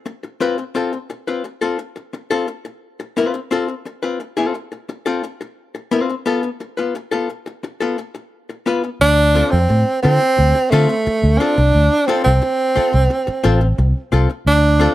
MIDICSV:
0, 0, Header, 1, 6, 480
1, 0, Start_track
1, 0, Tempo, 688863
1, 525, Time_signature, 4, 2, 24, 8
1, 5804, Tempo, 681818
1, 10461, End_track
2, 0, Start_track
2, 0, Title_t, "Hollow-body jazz guitar"
2, 0, Program_c, 0, 26
2, 282, Note_on_c, 0, 60, 69
2, 286, Note_on_c, 0, 65, 85
2, 290, Note_on_c, 0, 71, 84
2, 401, Note_off_c, 0, 71, 0
2, 402, Note_off_c, 0, 65, 0
2, 437, Note_off_c, 0, 60, 0
2, 521, Note_on_c, 0, 60, 70
2, 526, Note_on_c, 0, 65, 69
2, 532, Note_on_c, 0, 69, 70
2, 638, Note_off_c, 0, 69, 0
2, 645, Note_off_c, 0, 65, 0
2, 677, Note_off_c, 0, 60, 0
2, 888, Note_on_c, 0, 71, 56
2, 892, Note_on_c, 0, 65, 57
2, 896, Note_on_c, 0, 60, 47
2, 997, Note_off_c, 0, 60, 0
2, 1000, Note_off_c, 0, 65, 0
2, 1007, Note_off_c, 0, 71, 0
2, 1125, Note_on_c, 0, 69, 75
2, 1131, Note_on_c, 0, 65, 70
2, 1133, Note_on_c, 0, 60, 56
2, 1237, Note_off_c, 0, 60, 0
2, 1239, Note_off_c, 0, 65, 0
2, 1242, Note_off_c, 0, 69, 0
2, 1607, Note_on_c, 0, 69, 82
2, 1611, Note_on_c, 0, 65, 69
2, 1615, Note_on_c, 0, 60, 64
2, 1717, Note_off_c, 0, 60, 0
2, 1720, Note_off_c, 0, 65, 0
2, 1723, Note_off_c, 0, 69, 0
2, 2207, Note_on_c, 0, 60, 71
2, 2213, Note_on_c, 0, 65, 78
2, 2216, Note_on_c, 0, 71, 81
2, 2324, Note_off_c, 0, 71, 0
2, 2325, Note_off_c, 0, 65, 0
2, 2361, Note_off_c, 0, 60, 0
2, 2445, Note_on_c, 0, 60, 76
2, 2452, Note_on_c, 0, 65, 77
2, 2456, Note_on_c, 0, 69, 79
2, 2558, Note_off_c, 0, 69, 0
2, 2566, Note_off_c, 0, 65, 0
2, 2600, Note_off_c, 0, 60, 0
2, 2805, Note_on_c, 0, 71, 57
2, 2809, Note_on_c, 0, 65, 50
2, 2813, Note_on_c, 0, 60, 52
2, 2918, Note_off_c, 0, 60, 0
2, 2922, Note_off_c, 0, 65, 0
2, 2927, Note_off_c, 0, 71, 0
2, 3044, Note_on_c, 0, 69, 71
2, 3048, Note_on_c, 0, 65, 69
2, 3054, Note_on_c, 0, 60, 63
2, 3157, Note_off_c, 0, 60, 0
2, 3162, Note_off_c, 0, 65, 0
2, 3164, Note_off_c, 0, 69, 0
2, 3524, Note_on_c, 0, 69, 71
2, 3529, Note_on_c, 0, 65, 78
2, 3533, Note_on_c, 0, 60, 62
2, 3639, Note_off_c, 0, 60, 0
2, 3642, Note_off_c, 0, 65, 0
2, 3646, Note_off_c, 0, 69, 0
2, 4121, Note_on_c, 0, 60, 84
2, 4128, Note_on_c, 0, 65, 74
2, 4131, Note_on_c, 0, 71, 67
2, 4244, Note_off_c, 0, 71, 0
2, 4245, Note_off_c, 0, 65, 0
2, 4278, Note_off_c, 0, 60, 0
2, 4360, Note_on_c, 0, 59, 80
2, 4365, Note_on_c, 0, 65, 67
2, 4369, Note_on_c, 0, 69, 88
2, 4472, Note_off_c, 0, 69, 0
2, 4479, Note_off_c, 0, 65, 0
2, 4517, Note_off_c, 0, 59, 0
2, 4719, Note_on_c, 0, 71, 55
2, 4727, Note_on_c, 0, 65, 57
2, 4731, Note_on_c, 0, 59, 44
2, 4834, Note_off_c, 0, 59, 0
2, 4838, Note_off_c, 0, 65, 0
2, 4843, Note_off_c, 0, 71, 0
2, 4957, Note_on_c, 0, 69, 76
2, 4964, Note_on_c, 0, 65, 72
2, 4967, Note_on_c, 0, 59, 53
2, 5074, Note_off_c, 0, 59, 0
2, 5078, Note_off_c, 0, 65, 0
2, 5080, Note_off_c, 0, 69, 0
2, 5439, Note_on_c, 0, 69, 70
2, 5446, Note_on_c, 0, 65, 64
2, 5449, Note_on_c, 0, 59, 59
2, 5552, Note_off_c, 0, 59, 0
2, 5555, Note_off_c, 0, 65, 0
2, 5559, Note_off_c, 0, 69, 0
2, 6037, Note_on_c, 0, 59, 68
2, 6043, Note_on_c, 0, 65, 76
2, 6046, Note_on_c, 0, 71, 79
2, 6158, Note_off_c, 0, 65, 0
2, 6158, Note_off_c, 0, 71, 0
2, 6194, Note_off_c, 0, 59, 0
2, 6521, Note_on_c, 0, 60, 85
2, 6525, Note_on_c, 0, 65, 82
2, 6530, Note_on_c, 0, 69, 83
2, 6677, Note_off_c, 0, 60, 0
2, 6679, Note_off_c, 0, 65, 0
2, 6682, Note_off_c, 0, 69, 0
2, 7003, Note_on_c, 0, 60, 65
2, 7009, Note_on_c, 0, 65, 61
2, 7014, Note_on_c, 0, 69, 67
2, 7117, Note_off_c, 0, 69, 0
2, 7125, Note_off_c, 0, 60, 0
2, 7125, Note_off_c, 0, 65, 0
2, 7487, Note_on_c, 0, 60, 95
2, 7492, Note_on_c, 0, 65, 96
2, 7495, Note_on_c, 0, 69, 101
2, 7599, Note_off_c, 0, 69, 0
2, 7606, Note_off_c, 0, 65, 0
2, 7641, Note_off_c, 0, 60, 0
2, 7967, Note_on_c, 0, 60, 71
2, 7971, Note_on_c, 0, 65, 69
2, 7974, Note_on_c, 0, 69, 69
2, 8081, Note_off_c, 0, 69, 0
2, 8087, Note_off_c, 0, 60, 0
2, 8087, Note_off_c, 0, 65, 0
2, 8444, Note_on_c, 0, 60, 81
2, 8450, Note_on_c, 0, 65, 93
2, 8454, Note_on_c, 0, 69, 101
2, 8598, Note_off_c, 0, 60, 0
2, 8601, Note_off_c, 0, 65, 0
2, 8603, Note_off_c, 0, 69, 0
2, 8920, Note_on_c, 0, 60, 72
2, 8924, Note_on_c, 0, 65, 71
2, 8929, Note_on_c, 0, 69, 73
2, 9033, Note_off_c, 0, 69, 0
2, 9040, Note_off_c, 0, 65, 0
2, 9043, Note_off_c, 0, 60, 0
2, 9399, Note_on_c, 0, 60, 90
2, 9403, Note_on_c, 0, 65, 93
2, 9408, Note_on_c, 0, 69, 91
2, 9513, Note_off_c, 0, 69, 0
2, 9518, Note_off_c, 0, 65, 0
2, 9555, Note_off_c, 0, 60, 0
2, 9880, Note_on_c, 0, 60, 67
2, 9884, Note_on_c, 0, 65, 82
2, 9890, Note_on_c, 0, 69, 76
2, 9996, Note_off_c, 0, 69, 0
2, 10002, Note_off_c, 0, 60, 0
2, 10003, Note_off_c, 0, 65, 0
2, 10356, Note_on_c, 0, 60, 89
2, 10364, Note_on_c, 0, 65, 92
2, 10367, Note_on_c, 0, 69, 106
2, 10461, Note_off_c, 0, 60, 0
2, 10461, Note_off_c, 0, 65, 0
2, 10461, Note_off_c, 0, 69, 0
2, 10461, End_track
3, 0, Start_track
3, 0, Title_t, "Tenor saxophone"
3, 0, Program_c, 1, 66
3, 6284, Note_on_c, 1, 62, 126
3, 6634, Note_on_c, 1, 60, 105
3, 6645, Note_off_c, 1, 62, 0
3, 6992, Note_off_c, 1, 60, 0
3, 6996, Note_on_c, 1, 60, 117
3, 7476, Note_on_c, 1, 57, 97
3, 7487, Note_off_c, 1, 60, 0
3, 7954, Note_on_c, 1, 62, 109
3, 7964, Note_off_c, 1, 57, 0
3, 8432, Note_on_c, 1, 60, 101
3, 8443, Note_off_c, 1, 62, 0
3, 8552, Note_off_c, 1, 60, 0
3, 8557, Note_on_c, 1, 60, 101
3, 9851, Note_off_c, 1, 60, 0
3, 10129, Note_on_c, 1, 62, 113
3, 10460, Note_off_c, 1, 62, 0
3, 10461, End_track
4, 0, Start_track
4, 0, Title_t, "Fingered electric bass"
4, 0, Program_c, 2, 33
4, 6286, Note_on_c, 2, 38, 102
4, 6566, Note_off_c, 2, 38, 0
4, 6648, Note_on_c, 2, 41, 97
4, 6741, Note_off_c, 2, 41, 0
4, 6769, Note_on_c, 2, 45, 91
4, 6861, Note_off_c, 2, 45, 0
4, 7013, Note_on_c, 2, 50, 105
4, 7104, Note_off_c, 2, 50, 0
4, 7252, Note_on_c, 2, 38, 98
4, 7343, Note_off_c, 2, 38, 0
4, 7491, Note_on_c, 2, 50, 87
4, 7582, Note_off_c, 2, 50, 0
4, 7849, Note_on_c, 2, 38, 104
4, 7941, Note_off_c, 2, 38, 0
4, 8091, Note_on_c, 2, 36, 83
4, 8183, Note_off_c, 2, 36, 0
4, 8210, Note_on_c, 2, 38, 96
4, 8302, Note_off_c, 2, 38, 0
4, 8572, Note_on_c, 2, 36, 105
4, 8663, Note_off_c, 2, 36, 0
4, 9050, Note_on_c, 2, 36, 87
4, 9141, Note_off_c, 2, 36, 0
4, 9408, Note_on_c, 2, 33, 93
4, 9593, Note_off_c, 2, 33, 0
4, 9645, Note_on_c, 2, 36, 104
4, 9738, Note_off_c, 2, 36, 0
4, 9886, Note_on_c, 2, 36, 97
4, 9978, Note_off_c, 2, 36, 0
4, 10123, Note_on_c, 2, 38, 109
4, 10402, Note_off_c, 2, 38, 0
4, 10461, End_track
5, 0, Start_track
5, 0, Title_t, "Muted fingered electric bass strokes"
5, 7732, Note_on_c, 9, 29, 50
5, 7803, Note_off_c, 9, 29, 0
5, 8930, Note_on_c, 9, 29, 55
5, 9000, Note_off_c, 9, 29, 0
5, 9290, Note_on_c, 9, 29, 52
5, 9360, Note_off_c, 9, 29, 0
5, 10461, End_track
6, 0, Start_track
6, 0, Title_t, "Muted hollow-body jazz guitar strokes"
6, 40, Note_on_c, 9, 29, 47
6, 109, Note_off_c, 9, 29, 0
6, 163, Note_on_c, 9, 29, 37
6, 233, Note_off_c, 9, 29, 0
6, 404, Note_on_c, 9, 29, 46
6, 474, Note_off_c, 9, 29, 0
6, 647, Note_on_c, 9, 29, 45
6, 716, Note_off_c, 9, 29, 0
6, 765, Note_on_c, 9, 29, 37
6, 835, Note_off_c, 9, 29, 0
6, 1005, Note_on_c, 9, 29, 37
6, 1075, Note_off_c, 9, 29, 0
6, 1245, Note_on_c, 9, 29, 37
6, 1315, Note_off_c, 9, 29, 0
6, 1365, Note_on_c, 9, 29, 41
6, 1434, Note_off_c, 9, 29, 0
6, 1486, Note_on_c, 9, 29, 38
6, 1556, Note_off_c, 9, 29, 0
6, 1725, Note_on_c, 9, 29, 36
6, 1795, Note_off_c, 9, 29, 0
6, 1846, Note_on_c, 9, 29, 42
6, 1916, Note_off_c, 9, 29, 0
6, 2089, Note_on_c, 9, 29, 47
6, 2158, Note_off_c, 9, 29, 0
6, 2327, Note_on_c, 9, 29, 55
6, 2396, Note_off_c, 9, 29, 0
6, 2567, Note_on_c, 9, 29, 43
6, 2636, Note_off_c, 9, 29, 0
6, 2686, Note_on_c, 9, 29, 33
6, 2756, Note_off_c, 9, 29, 0
6, 2926, Note_on_c, 9, 29, 37
6, 2996, Note_off_c, 9, 29, 0
6, 3166, Note_on_c, 9, 29, 30
6, 3235, Note_off_c, 9, 29, 0
6, 3287, Note_on_c, 9, 29, 39
6, 3357, Note_off_c, 9, 29, 0
6, 3407, Note_on_c, 9, 29, 41
6, 3476, Note_off_c, 9, 29, 0
6, 3647, Note_on_c, 9, 29, 41
6, 3717, Note_off_c, 9, 29, 0
6, 3768, Note_on_c, 9, 29, 50
6, 3838, Note_off_c, 9, 29, 0
6, 4005, Note_on_c, 9, 29, 47
6, 4074, Note_off_c, 9, 29, 0
6, 4247, Note_on_c, 9, 29, 41
6, 4316, Note_off_c, 9, 29, 0
6, 4480, Note_on_c, 9, 29, 50
6, 4550, Note_off_c, 9, 29, 0
6, 4601, Note_on_c, 9, 29, 36
6, 4671, Note_off_c, 9, 29, 0
6, 4843, Note_on_c, 9, 29, 45
6, 4913, Note_off_c, 9, 29, 0
6, 5083, Note_on_c, 9, 29, 28
6, 5152, Note_off_c, 9, 29, 0
6, 5199, Note_on_c, 9, 29, 45
6, 5269, Note_off_c, 9, 29, 0
6, 5319, Note_on_c, 9, 29, 43
6, 5389, Note_off_c, 9, 29, 0
6, 5561, Note_on_c, 9, 29, 41
6, 5630, Note_off_c, 9, 29, 0
6, 5676, Note_on_c, 9, 29, 46
6, 5746, Note_off_c, 9, 29, 0
6, 5920, Note_on_c, 9, 29, 35
6, 5991, Note_off_c, 9, 29, 0
6, 6161, Note_on_c, 9, 29, 39
6, 6231, Note_off_c, 9, 29, 0
6, 6762, Note_on_c, 9, 29, 47
6, 6832, Note_off_c, 9, 29, 0
6, 7125, Note_on_c, 9, 29, 55
6, 7195, Note_off_c, 9, 29, 0
6, 7243, Note_on_c, 9, 29, 38
6, 7313, Note_off_c, 9, 29, 0
6, 7367, Note_on_c, 9, 29, 46
6, 7437, Note_off_c, 9, 29, 0
6, 7608, Note_on_c, 9, 29, 57
6, 7678, Note_off_c, 9, 29, 0
6, 7729, Note_on_c, 9, 29, 41
6, 7799, Note_off_c, 9, 29, 0
6, 8089, Note_on_c, 9, 29, 57
6, 8160, Note_off_c, 9, 29, 0
6, 8682, Note_on_c, 9, 29, 46
6, 8752, Note_off_c, 9, 29, 0
6, 9041, Note_on_c, 9, 29, 47
6, 9112, Note_off_c, 9, 29, 0
6, 9162, Note_on_c, 9, 29, 44
6, 9233, Note_off_c, 9, 29, 0
6, 9283, Note_on_c, 9, 29, 53
6, 9353, Note_off_c, 9, 29, 0
6, 9521, Note_on_c, 9, 29, 55
6, 9591, Note_off_c, 9, 29, 0
6, 9644, Note_on_c, 9, 29, 38
6, 9714, Note_off_c, 9, 29, 0
6, 10005, Note_on_c, 9, 29, 46
6, 10075, Note_off_c, 9, 29, 0
6, 10461, End_track
0, 0, End_of_file